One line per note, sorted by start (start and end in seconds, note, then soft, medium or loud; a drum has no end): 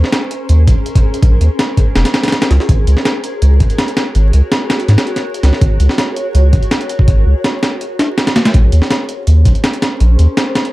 0.00 2.65 C#4 medium
0.00 8.50 G#4 medium
0.00 8.50 A#4 medium
0.00 2.65 C5 loud
0.00 snare medium
0.12 snare loud
0.12 closed hi-hat medium
0.31 closed hi-hat medium
0.49 0.69 D#2 loud
0.49 closed hi-hat medium
0.67 0.76 A#1 medium
0.67 kick loud
0.67 closed hi-hat medium
0.86 closed hi-hat medium
0.95 kick loud
0.95 closed hi-hat medium
1.14 closed hi-hat medium
1.22 1.39 A#1 loud
1.22 kick loud
1.22 closed hi-hat medium
1.41 1.49 D#2 medium
1.41 closed hi-hat medium
1.59 snare loud
1.59 closed hi-hat medium
1.77 kick medium
1.77 closed hi-hat medium
1.96 2.04 F1 medium
1.96 snare loud
1.96 closed hi-hat medium
2.05 snare loud
2.05 closed hi-hat medium
2.14 snare loud
2.14 closed hi-hat medium
2.23 snare medium
2.23 closed hi-hat medium
2.28 snare medium
2.28 closed hi-hat medium
2.32 snare loud
2.32 closed hi-hat medium
2.42 snare loud
2.42 closed hi-hat medium
2.50 2.59 C#2 medium
2.50 snare medium
2.50 closed hi-hat medium
2.60 snare medium
2.69 2.85 G#1 loud
2.69 8.50 F#4 medium
2.69 8.50 C#5 medium
2.69 kick loud
2.69 closed hi-hat medium
2.87 2.96 C#2 medium
2.87 closed hi-hat medium
2.97 snare medium
3.05 snare loud
3.05 closed hi-hat medium
3.24 closed hi-hat medium
3.42 3.62 C#2 loud
3.42 closed hi-hat medium
3.60 3.69 G#1 medium
3.60 kick medium
3.60 closed hi-hat medium
3.70 closed hi-hat soft
3.78 snare loud
3.78 closed hi-hat medium
3.88 closed hi-hat soft
3.97 snare loud
3.97 closed hi-hat medium
4.15 4.32 G#1 loud
4.15 closed hi-hat medium
4.33 4.42 C#2 loud
4.33 closed hi-hat medium
4.52 snare loud
4.52 closed hi-hat medium
4.70 snare loud
4.70 closed hi-hat medium
4.80 closed hi-hat soft
4.88 4.97 G#2 medium
4.88 snare soft
4.88 closed hi-hat medium
4.98 snare loud
4.98 closed hi-hat medium
5.07 closed hi-hat soft
5.16 snare medium
5.16 closed hi-hat medium
5.34 closed hi-hat medium
5.43 5.52 C#2 medium
5.43 snare medium
5.43 closed hi-hat medium
5.53 snare medium
5.61 5.78 G#1 loud
5.61 kick loud
5.61 closed hi-hat medium
5.80 5.88 C#2 medium
5.80 closed hi-hat medium
5.89 snare medium
5.98 snare loud
5.98 closed hi-hat medium
6.16 closed hi-hat medium
6.35 6.54 C#2 loud
6.35 closed hi-hat medium
6.53 6.62 G#1 medium
6.53 kick loud
6.53 closed hi-hat medium
6.63 closed hi-hat soft
6.71 snare loud
6.71 closed hi-hat medium
6.81 closed hi-hat soft
6.89 closed hi-hat medium
6.99 kick loud
7.08 7.24 G#1 loud
7.08 kick loud
7.08 closed hi-hat medium
7.26 7.35 C#2 medium
7.44 snare loud
7.44 closed hi-hat medium
7.63 snare loud
7.63 closed hi-hat medium
7.81 closed hi-hat medium
7.99 snare loud
7.99 closed hi-hat medium
8.18 snare loud
8.18 closed hi-hat medium
8.27 snare loud
8.27 closed hi-hat medium
8.36 snare loud
8.36 closed hi-hat medium
8.45 snare loud
8.45 closed hi-hat medium
8.54 8.71 A#1 loud
8.54 10.73 C#4 medium
8.54 10.73 G#4 medium
8.54 10.73 A#4 medium
8.54 10.73 C5 medium
8.54 kick loud
8.54 closed hi-hat medium
8.72 8.81 D#2 medium
8.72 closed hi-hat medium
8.82 snare medium
8.90 snare loud
8.90 closed hi-hat medium
9.09 closed hi-hat medium
9.27 9.47 D#2 loud
9.27 closed hi-hat medium
9.45 9.54 A#1 medium
9.45 kick medium
9.45 closed hi-hat medium
9.55 closed hi-hat soft
9.64 snare loud
9.64 closed hi-hat medium
9.73 closed hi-hat soft
9.82 snare loud
9.82 closed hi-hat medium
10.00 10.17 A#1 loud
10.00 closed hi-hat medium
10.19 10.28 D#2 loud
10.19 closed hi-hat medium
10.37 snare loud
10.37 closed hi-hat medium
10.55 snare loud
10.55 closed hi-hat medium
10.65 closed hi-hat soft